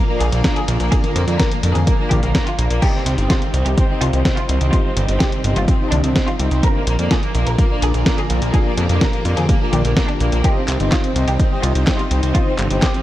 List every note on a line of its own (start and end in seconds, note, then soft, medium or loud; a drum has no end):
0.00 2.79 A#2 medium
0.00 2.79 D3 medium
0.00 2.79 F3 medium
0.00 2.79 D4 medium
0.00 2.78 F4 medium
0.09 0.19 A#3 medium
0.09 0.29 D4 loud
0.09 0.30 F4 medium
0.09 0.29 A#4 medium
0.09 0.29 D5 loud
0.20 0.31 A#1 medium
0.20 0.30 G#4 medium
0.20 closed hi-hat medium
0.32 0.43 A#1 medium
0.32 0.42 A#3 medium
0.32 0.59 D4 medium
0.32 0.59 F4 medium
0.32 0.59 D5 medium
0.32 closed hi-hat medium
0.44 0.54 A#3 medium
0.44 kick loud
0.44 snare loud
0.44 closed hi-hat medium
0.56 0.66 G#4 medium
0.56 closed hi-hat soft
0.68 0.78 A#1 medium
0.68 0.78 A#3 medium
0.68 0.89 D4 medium
0.68 0.89 F4 medium
0.68 0.89 A#4 medium
0.68 0.89 D5 medium
0.68 closed hi-hat medium
0.80 0.90 A#1 medium
0.80 0.90 A#3 medium
0.80 closed hi-hat medium
0.92 1.08 D4 medium
0.92 1.08 F4 medium
0.92 1.02 G#4 medium
0.92 1.08 A#4 medium
0.92 1.08 D5 loud
0.92 kick loud
0.92 closed hi-hat medium
1.04 1.14 A#3 medium
1.04 closed hi-hat soft
1.04 high tom medium
1.16 1.26 F2 medium
1.16 1.26 A#3 medium
1.16 closed hi-hat medium
1.27 1.38 F2 medium
1.27 1.38 A#3 medium
1.27 1.44 D4 loud
1.27 1.44 F4 medium
1.27 1.44 A#4 medium
1.27 1.44 D5 loud
1.27 closed hi-hat medium
1.39 1.49 A#4 medium
1.39 kick loud
1.39 snare loud
1.39 closed hi-hat medium
1.51 1.61 A#3 medium
1.51 closed hi-hat soft
1.63 1.73 F2 medium
1.63 1.73 A#3 medium
1.63 1.80 D4 medium
1.63 1.80 F4 medium
1.63 1.80 A#4 medium
1.63 1.80 D5 loud
1.63 closed hi-hat medium
1.75 1.85 F2 medium
1.75 1.85 G#4 medium
1.75 closed hi-hat soft
1.75 high tom medium
1.87 1.97 A#3 medium
1.87 kick loud
1.87 closed hi-hat medium
1.99 2.09 A#3 medium
1.99 2.20 D4 loud
1.99 2.20 F4 medium
1.99 2.20 A#4 medium
1.99 2.20 D5 loud
2.11 2.21 A#1 medium
2.11 2.21 G4 medium
2.11 kick medium
2.11 closed hi-hat medium
2.11 high tom medium
2.23 2.33 A#1 medium
2.23 2.33 A#3 medium
2.23 2.49 A#4 medium
2.23 closed hi-hat medium
2.35 2.45 A#3 medium
2.35 kick loud
2.35 snare loud
2.35 closed hi-hat medium
2.47 2.57 F4 medium
2.47 closed hi-hat soft
2.58 2.69 A#1 medium
2.58 2.69 A#3 medium
2.58 2.80 D4 medium
2.58 2.80 F4 medium
2.58 2.80 A#4 medium
2.58 2.80 D5 medium
2.58 closed hi-hat medium
2.70 2.81 A#1 medium
2.70 2.80 A#3 medium
2.70 closed hi-hat medium
2.82 6.60 C3 medium
2.82 6.60 D#3 medium
2.82 6.60 G3 medium
2.82 2.99 D#4 medium
2.82 6.60 D#4 medium
2.82 2.92 G4 medium
2.82 6.60 G4 medium
2.82 2.99 D#5 loud
2.82 kick loud
2.82 closed hi-hat medium
2.82 crash medium
2.94 3.04 C4 medium
3.06 3.16 C2 loud
3.06 3.16 C4 medium
3.06 closed hi-hat medium
3.18 3.28 G1 medium
3.18 3.28 C4 medium
3.18 3.35 D#4 loud
3.18 3.35 G4 medium
3.18 3.35 C5 medium
3.18 3.35 D#5 loud
3.18 closed hi-hat medium
3.30 3.40 F4 medium
3.30 kick loud
3.30 snare loud
3.30 closed hi-hat medium
3.42 3.52 C4 medium
3.42 closed hi-hat soft
3.54 3.64 C2 loud
3.54 3.64 C4 medium
3.54 3.70 D#4 medium
3.54 3.70 G4 medium
3.54 3.70 C5 medium
3.54 3.70 D#5 loud
3.54 closed hi-hat medium
3.66 3.76 C2 medium
3.66 3.76 G4 medium
3.66 closed hi-hat soft
3.78 3.88 C4 medium
3.78 kick loud
3.78 closed hi-hat medium
3.89 3.99 C4 medium
3.89 4.10 D#4 medium
3.89 4.10 G4 medium
3.89 4.10 C5 medium
3.89 4.10 D#5 loud
4.01 4.11 C2 medium
4.01 4.11 F4 medium
4.01 closed hi-hat medium
4.13 4.23 C2 medium
4.13 4.23 C4 medium
4.13 4.40 D#4 medium
4.13 4.40 G4 medium
4.13 4.40 C5 medium
4.13 4.40 D#5 medium
4.13 closed hi-hat medium
4.25 4.35 C4 medium
4.25 kick loud
4.25 snare loud
4.25 closed hi-hat medium
4.37 4.47 F4 medium
4.37 closed hi-hat soft
4.49 4.59 C2 medium
4.49 4.59 C4 medium
4.49 4.70 D#4 medium
4.49 4.70 G4 medium
4.49 4.70 C5 medium
4.49 4.70 D#5 medium
4.49 closed hi-hat medium
4.61 4.71 C2 medium
4.61 4.71 C4 medium
4.61 closed hi-hat medium
4.73 4.89 D#4 medium
4.73 4.83 F4 medium
4.73 4.89 G4 medium
4.73 4.89 C5 medium
4.73 4.89 D#5 loud
4.73 kick loud
4.73 closed hi-hat medium
4.85 4.95 C4 medium
4.96 5.07 G1 medium
4.96 5.07 C4 medium
4.96 closed hi-hat medium
5.08 5.19 G1 medium
5.08 5.19 C4 medium
5.08 5.25 D#4 medium
5.08 5.25 G4 medium
5.08 5.25 C5 medium
5.08 5.25 D#5 loud
5.08 closed hi-hat soft
5.20 5.30 G4 medium
5.20 kick loud
5.20 snare loud
5.20 closed hi-hat medium
5.32 5.42 C4 medium
5.32 closed hi-hat soft
5.44 5.54 G1 medium
5.44 5.54 C4 medium
5.44 5.61 D#4 medium
5.44 5.61 G4 medium
5.44 5.61 C5 medium
5.44 5.61 D#5 loud
5.44 closed hi-hat medium
5.56 5.66 G1 medium
5.56 5.66 F4 medium
5.56 closed hi-hat medium
5.56 high tom medium
5.68 5.78 C4 medium
5.68 kick loud
5.68 closed hi-hat medium
5.80 5.90 C4 medium
5.80 6.01 D#4 medium
5.80 6.01 G4 medium
5.80 6.01 C5 medium
5.80 6.01 D#5 loud
5.92 6.02 C2 medium
5.92 6.02 D4 medium
5.92 closed hi-hat medium
5.92 high tom medium
6.04 6.14 C2 medium
6.04 6.14 C4 medium
6.04 6.30 D#4 medium
6.04 6.30 G4 medium
6.04 6.30 C5 medium
6.04 6.30 D#5 medium
6.04 closed hi-hat medium
6.16 6.26 C4 medium
6.16 kick loud
6.16 snare loud
6.16 closed hi-hat medium
6.28 6.38 F4 medium
6.28 closed hi-hat soft
6.39 6.50 C2 medium
6.39 6.50 C4 medium
6.39 6.60 D#4 medium
6.39 6.60 G4 medium
6.39 6.60 C5 medium
6.39 6.60 D#5 medium
6.39 closed hi-hat medium
6.51 6.61 C2 medium
6.51 6.61 C4 medium
6.51 closed hi-hat medium
6.63 10.41 A#2 medium
6.63 10.40 D3 medium
6.63 10.41 F3 medium
6.63 6.80 D4 medium
6.63 10.41 D4 medium
6.63 6.80 F4 medium
6.63 8.52 F4 medium
6.63 6.80 A#4 medium
6.63 6.73 A#4 loud
6.63 6.80 D5 loud
6.63 kick loud
6.63 closed hi-hat medium
6.75 6.85 A#3 medium
6.87 6.97 A#1 medium
6.87 6.97 A#3 medium
6.87 closed hi-hat medium
6.99 7.09 F2 medium
6.99 7.09 A#3 medium
6.99 7.16 D4 loud
6.99 7.16 F4 medium
6.99 7.16 A#4 medium
6.99 7.16 D5 loud
6.99 closed hi-hat medium
7.11 7.21 G#4 medium
7.11 kick loud
7.11 snare loud
7.11 closed hi-hat medium
7.23 7.33 A#3 medium
7.23 closed hi-hat soft
7.35 7.45 A#1 loud
7.35 7.45 A#3 medium
7.35 7.51 D4 medium
7.35 7.51 F4 medium
7.35 7.51 A#4 medium
7.35 7.51 D5 loud
7.35 closed hi-hat medium
7.46 7.57 A#1 medium
7.46 7.57 A#4 medium
7.46 closed hi-hat soft
7.58 7.69 A#3 medium
7.58 kick loud
7.58 closed hi-hat medium
7.70 7.81 A#3 medium
7.70 7.91 D4 medium
7.70 7.91 F4 medium
7.70 7.91 A#4 medium
7.70 7.91 D5 loud
7.82 7.92 A#1 medium
7.82 7.92 G#4 medium
7.82 closed hi-hat medium
7.94 8.04 A#1 medium
7.94 8.04 A#3 medium
7.94 8.21 D4 medium
7.94 8.21 F4 medium
7.94 8.21 A#4 medium
7.94 8.21 D5 medium
7.94 closed hi-hat soft
8.06 8.16 A#3 medium
8.06 kick loud
8.06 snare loud
8.06 closed hi-hat medium
8.18 8.28 G#4 medium
8.18 closed hi-hat soft
8.30 8.40 A#1 medium
8.30 8.40 A#3 medium
8.30 8.51 D4 medium
8.30 8.51 F4 medium
8.30 8.51 A#4 medium
8.30 8.51 D5 medium
8.30 closed hi-hat medium
8.42 8.52 A#1 medium
8.42 8.52 A#3 medium
8.42 closed hi-hat soft
8.54 8.70 D4 medium
8.54 8.70 F4 medium
8.54 10.42 G4 medium
8.54 8.64 G#4 medium
8.54 8.70 A#4 medium
8.54 kick loud
8.54 closed hi-hat medium
8.66 8.76 A#3 medium
8.77 8.88 F2 medium
8.77 8.88 A#3 medium
8.77 closed hi-hat medium
8.89 9.00 F2 medium
8.89 8.99 A#3 medium
8.89 9.06 D4 medium
8.89 9.06 F4 medium
8.89 9.06 A#4 medium
8.89 9.06 D5 loud
8.89 closed hi-hat soft
9.01 9.11 A#4 medium
9.01 kick loud
9.01 snare loud
9.01 closed hi-hat medium
9.13 9.23 A#3 medium
9.13 closed hi-hat soft
9.25 9.35 F2 loud
9.25 9.35 A#3 medium
9.25 9.42 D4 medium
9.25 9.42 F4 medium
9.25 9.42 A#4 medium
9.25 9.42 D5 loud
9.25 closed hi-hat medium
9.37 9.47 F2 medium
9.37 9.47 G#4 medium
9.37 closed hi-hat soft
9.37 high tom medium
9.49 9.59 A#3 medium
9.49 kick loud
9.49 closed hi-hat medium
9.61 9.71 A#3 medium
9.61 9.82 D4 loud
9.61 9.82 F4 medium
9.61 9.82 A#4 medium
9.61 9.82 D5 loud
9.73 9.83 A#1 medium
9.73 9.83 G4 medium
9.73 closed hi-hat medium
9.73 high tom medium
9.85 9.95 A#1 medium
9.85 9.95 A#3 medium
9.85 10.11 D4 medium
9.85 10.11 F4 medium
9.85 10.11 A#4 medium
9.85 10.11 D5 medium
9.85 closed hi-hat soft
9.97 10.07 A#3 medium
9.97 kick loud
9.97 snare loud
9.97 closed hi-hat medium
10.08 10.18 D4 medium
10.08 closed hi-hat soft
10.20 10.31 A#1 medium
10.20 10.30 A#3 medium
10.20 10.41 D4 medium
10.20 10.41 F4 medium
10.20 10.41 A#4 medium
10.20 10.41 D5 medium
10.20 closed hi-hat medium
10.32 10.43 A#1 medium
10.32 10.42 A#3 medium
10.32 closed hi-hat soft
10.44 13.03 C3 medium
10.44 13.03 D#3 medium
10.44 13.03 G3 medium
10.44 10.61 D#4 medium
10.44 13.03 D#4 medium
10.44 10.61 G4 medium
10.44 12.33 G4 medium
10.44 10.54 G4 medium
10.44 10.61 C5 medium
10.44 10.61 D#5 loud
10.44 kick loud
10.44 closed hi-hat medium
10.56 10.66 C4 medium
10.68 10.78 C2 medium
10.68 10.78 C4 medium
10.68 clap medium
10.68 closed hi-hat medium
10.80 10.90 G1 medium
10.80 10.90 C4 medium
10.80 10.97 D#4 loud
10.80 10.97 G4 medium
10.80 10.97 C5 medium
10.80 10.97 D#5 loud
10.80 closed hi-hat soft
10.92 11.02 F4 medium
10.92 kick loud
10.92 snare loud
10.92 clap medium
10.92 closed hi-hat medium
11.04 11.14 C4 medium
11.04 closed hi-hat soft
11.16 11.26 C2 medium
11.16 11.26 C4 medium
11.16 11.32 D#4 medium
11.16 11.32 G4 medium
11.16 11.32 C5 medium
11.16 11.32 D#5 loud
11.16 closed hi-hat medium
11.27 11.38 C2 medium
11.27 11.38 G4 medium
11.27 closed hi-hat soft
11.39 11.50 C4 medium
11.39 kick loud
11.39 closed hi-hat medium
11.51 11.61 C4 medium
11.51 11.72 D#4 medium
11.51 11.72 G4 medium
11.51 11.72 C5 medium
11.51 11.72 D#5 loud
11.63 11.73 C2 medium
11.63 11.73 F4 medium
11.63 closed hi-hat medium
11.75 11.85 C2 medium
11.75 11.85 C4 medium
11.75 12.02 D#4 medium
11.75 12.02 G4 medium
11.75 12.02 C5 medium
11.75 12.02 D#5 medium
11.75 closed hi-hat soft
11.87 11.97 C4 medium
11.87 kick loud
11.87 snare loud
11.87 clap medium
11.87 closed hi-hat medium
11.99 12.09 F4 medium
11.99 closed hi-hat soft
12.11 12.21 C2 medium
12.11 12.21 C4 medium
12.11 12.32 D#4 medium
12.11 12.32 G4 medium
12.11 12.32 C5 medium
12.11 12.32 D#5 medium
12.11 closed hi-hat medium
12.23 12.33 C2 medium
12.23 12.33 C4 medium
12.23 closed hi-hat soft
12.35 12.51 D#4 medium
12.35 12.45 F4 medium
12.35 13.03 F4 medium
12.35 12.51 G4 medium
12.35 12.51 C5 medium
12.35 12.51 D#5 loud
12.35 kick loud
12.35 closed hi-hat medium
12.47 12.57 C4 medium
12.58 12.69 G1 medium
12.58 12.68 C4 medium
12.58 clap medium
12.58 closed hi-hat medium
12.70 12.81 G1 medium
12.70 12.80 C4 medium
12.70 12.87 D#4 medium
12.70 12.87 G4 medium
12.70 12.87 C5 medium
12.70 12.87 D#5 loud
12.70 closed hi-hat soft
12.82 12.92 G4 medium
12.82 kick loud
12.82 snare loud
12.82 clap medium
12.82 closed hi-hat medium
12.94 13.03 C4 medium
12.94 closed hi-hat soft